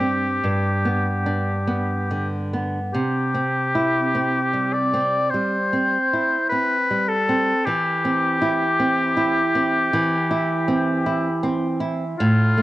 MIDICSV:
0, 0, Header, 1, 3, 480
1, 0, Start_track
1, 0, Key_signature, 0, "major"
1, 0, Tempo, 1260504
1, 1124, Time_signature, 4, 2, 24, 8
1, 1124, Tempo, 1192843
1, 2084, Tempo, 1169591
1, 3044, Tempo, 1129944
1, 5145, End_track
2, 0, Start_track
2, 0, Title_t, "Oboe"
2, 0, Program_c, 0, 68
2, 0, Note_on_c, 0, 67, 58
2, 868, Note_off_c, 0, 67, 0
2, 1117, Note_on_c, 0, 67, 56
2, 1839, Note_on_c, 0, 74, 62
2, 1845, Note_off_c, 0, 67, 0
2, 2068, Note_on_c, 0, 72, 55
2, 2074, Note_off_c, 0, 74, 0
2, 2555, Note_off_c, 0, 72, 0
2, 2557, Note_on_c, 0, 71, 60
2, 2800, Note_on_c, 0, 69, 59
2, 2806, Note_off_c, 0, 71, 0
2, 3034, Note_on_c, 0, 67, 67
2, 3040, Note_off_c, 0, 69, 0
2, 4715, Note_off_c, 0, 67, 0
2, 4958, Note_on_c, 0, 65, 86
2, 5145, Note_off_c, 0, 65, 0
2, 5145, End_track
3, 0, Start_track
3, 0, Title_t, "Nylon-string guitar"
3, 0, Program_c, 1, 24
3, 0, Note_on_c, 1, 43, 51
3, 0, Note_on_c, 1, 55, 34
3, 2, Note_on_c, 1, 60, 35
3, 99, Note_off_c, 1, 55, 0
3, 150, Note_off_c, 1, 43, 0
3, 164, Note_off_c, 1, 60, 0
3, 167, Note_on_c, 1, 43, 47
3, 325, Note_on_c, 1, 59, 35
3, 481, Note_on_c, 1, 62, 36
3, 579, Note_off_c, 1, 59, 0
3, 638, Note_on_c, 1, 59, 36
3, 738, Note_off_c, 1, 62, 0
3, 802, Note_on_c, 1, 50, 33
3, 899, Note_off_c, 1, 59, 0
3, 965, Note_on_c, 1, 59, 33
3, 1061, Note_off_c, 1, 50, 0
3, 1110, Note_off_c, 1, 43, 0
3, 1122, Note_on_c, 1, 48, 50
3, 1123, Note_off_c, 1, 59, 0
3, 1283, Note_on_c, 1, 60, 36
3, 1446, Note_on_c, 1, 64, 38
3, 1542, Note_off_c, 1, 60, 0
3, 1605, Note_on_c, 1, 60, 38
3, 1703, Note_off_c, 1, 64, 0
3, 1760, Note_on_c, 1, 55, 35
3, 1862, Note_off_c, 1, 60, 0
3, 1921, Note_on_c, 1, 60, 43
3, 2017, Note_off_c, 1, 55, 0
3, 2067, Note_off_c, 1, 48, 0
3, 2084, Note_on_c, 1, 55, 41
3, 2177, Note_off_c, 1, 60, 0
3, 2244, Note_on_c, 1, 60, 37
3, 2341, Note_off_c, 1, 55, 0
3, 2410, Note_on_c, 1, 64, 39
3, 2502, Note_off_c, 1, 60, 0
3, 2569, Note_on_c, 1, 60, 38
3, 2666, Note_off_c, 1, 64, 0
3, 2727, Note_on_c, 1, 55, 38
3, 2824, Note_off_c, 1, 60, 0
3, 2885, Note_on_c, 1, 60, 40
3, 2981, Note_off_c, 1, 55, 0
3, 3040, Note_on_c, 1, 52, 57
3, 3042, Note_off_c, 1, 60, 0
3, 3202, Note_on_c, 1, 60, 43
3, 3358, Note_on_c, 1, 64, 49
3, 3457, Note_off_c, 1, 60, 0
3, 3519, Note_on_c, 1, 60, 47
3, 3616, Note_off_c, 1, 64, 0
3, 3677, Note_on_c, 1, 64, 48
3, 3778, Note_off_c, 1, 60, 0
3, 3841, Note_on_c, 1, 60, 51
3, 3938, Note_off_c, 1, 64, 0
3, 3986, Note_off_c, 1, 52, 0
3, 4003, Note_on_c, 1, 52, 58
3, 4099, Note_off_c, 1, 60, 0
3, 4161, Note_on_c, 1, 64, 48
3, 4319, Note_on_c, 1, 60, 49
3, 4416, Note_off_c, 1, 64, 0
3, 4481, Note_on_c, 1, 64, 51
3, 4574, Note_off_c, 1, 60, 0
3, 4639, Note_on_c, 1, 60, 46
3, 4736, Note_off_c, 1, 64, 0
3, 4797, Note_on_c, 1, 64, 46
3, 4896, Note_off_c, 1, 60, 0
3, 4944, Note_off_c, 1, 52, 0
3, 4960, Note_off_c, 1, 64, 0
3, 4966, Note_on_c, 1, 45, 70
3, 5125, Note_on_c, 1, 57, 49
3, 5145, Note_off_c, 1, 45, 0
3, 5145, Note_off_c, 1, 57, 0
3, 5145, End_track
0, 0, End_of_file